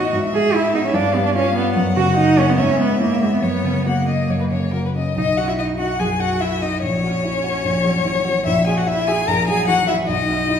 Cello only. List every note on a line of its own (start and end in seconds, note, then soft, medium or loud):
0.00 0.13 F#4 medium
0.34 0.55 G#4 medium
0.54 0.74 E4 medium
0.75 0.79 D#4 medium
0.85 0.96 C#4 medium
0.94 1.16 D4 medium
1.14 1.25 B3 medium
1.26 1.30 D4 medium
1.35 1.55 C#4 medium
1.55 1.75 B3 medium
1.96 2.15 F#4 medium
2.17 2.40 D#4 medium
2.39 2.51 C#4 medium
2.49 2.60 B3 medium
2.59 2.79 C#4 medium
2.80 3.00 B3 medium
3.01 3.24 A#3 medium
3.22 3.32 G#3 medium
3.33 3.37 B3 soft
3.43 3.88 B3 medium
3.86 4.73 A#3 soft
5.18 5.26 D#4 soft
5.38 5.49 F#4 soft
5.48 5.58 E4 soft
5.59 5.78 D#4 soft
5.79 5.99 F#4 soft
6.00 6.08 G#4 soft
6.21 6.43 F#4 soft
6.41 6.62 E4 soft
6.63 6.71 D#4 soft
6.84 8.44 C#4 soft
8.47 8.55 E4 soft
8.67 8.76 G#4 soft
8.77 8.81 F#4 soft
8.88 9.10 E4 medium
9.08 9.29 G#4 soft
9.28 9.48 A#4 medium
9.48 9.68 G#4 medium
9.68 9.76 F#4 soft
9.89 9.97 E4 medium
10.09 10.60 D#4 medium